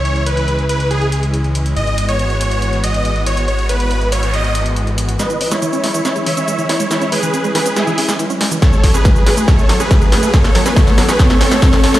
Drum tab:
HH |xxxxxxxxxxxxxxxx|xxxxxxxxxxxxxxxx|xxxxxxxxxxxxxxxx|xxoxxxoxxxoxxxox|
SH |----------------|----------------|----------------|xx-xxx-xxx-xxx-x|
SD |----------------|----------------|----------------|o--o--o-o-----o-|
BD |----------------|----------------|----------------|----------------|

HH |xxoxxxoxxxoxxxox|xxoxxxoxxxoxxxox|xxoxxxoxxxoxxxox|
SH |xx-xxx-xxx-xxx-x|xx-xxx-xxx-xxx-x|xx-xxx-xxx-xxx-x|
SD |o-----o-o--o--o-|o-o-o-o-o-o-o-o-|oooooooooooooooo|
BD |----------------|o-o-o---o---o---|o---o---o---o---|